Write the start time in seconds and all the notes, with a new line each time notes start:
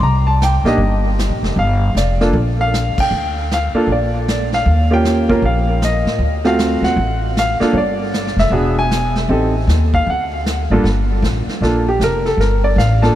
0.00 C2 A#5, brush sweep
0.27 A5
0.42 G5, snare, hi-hat pedal
0.64 A#1 A#3 D4 D#4 G4 D#5, snare
0.78 G1, brush sweep
1.19 snare, hi-hat pedal
1.29 A#1
1.43 F1, snare
1.56 G1 F5, brush sweep
1.95 F1 D5, snare, hi-hat pedal
2.21 A#3 D4 F4 A4, snare
2.33 A#1, brush sweep
2.61 F5
2.74 snare, hi-hat pedal
2.98 G5, muted upright bass stroke, kick, ride
3.11 D2, brush sweep
3.51 F5, snare, hi-hat pedal
3.74 A#3 D4 F4 A4, muted upright bass stroke
3.87 A#1, brush sweep
3.92 D5
4.28 snare, hi-hat pedal
4.53 F5, snare
4.66 D#2, brush sweep
4.91 A#3 C#4 F4 G4 G5
5.05 snare, hi-hat pedal
5.29 A#3 C#4 F4 A#4, kick
5.42 A#1 F5, brush sweep
5.82 D#5, snare, hi-hat pedal
6.05 A2, snare
6.18 D2, brush sweep
6.44 A3 C4 F4 F#4 F5, snare
6.59 snare, hi-hat pedal
6.81 D#2 F#5, snare
6.96 A1, brush sweep
7.37 F5, snare, hi-hat pedal
7.60 A#3 D4 F4 A4, muted upright bass stroke, snare
7.73 G1 C#5, brush sweep
7.78 D5
8.14 snare, hi-hat pedal
8.27 snare
8.36 F1 E5, snare
8.50 E1 B3 D4 F#4 G#4, brush sweep
8.79 G#5
8.91 snare, hi-hat pedal
9.15 snare
9.28 A1 C4 D#4 G4 A4, brush sweep
9.67 D#2, snare, hi-hat pedal
9.94 F5, kick
10.07 D2 F#5, brush sweep
10.46 snare, hi-hat pedal
10.70 G#1 G2 A#3 D4 F4 A4
10.84 G1, brush sweep, snare
11.22 A1, snare, hi-hat pedal
11.47 muted upright bass stroke, snare
11.61 A#1 A#3 D4 F4 A4, brush sweep, snare
11.89 G4
12.00 F1 A#4, snare, hi-hat pedal
12.26 A4, snare
12.37 G1 A#4, brush sweep, snare
12.64 D5
12.76 A1 F5, snare, hi-hat pedal
13.02 A#3 D4 F4 A4 A5, snare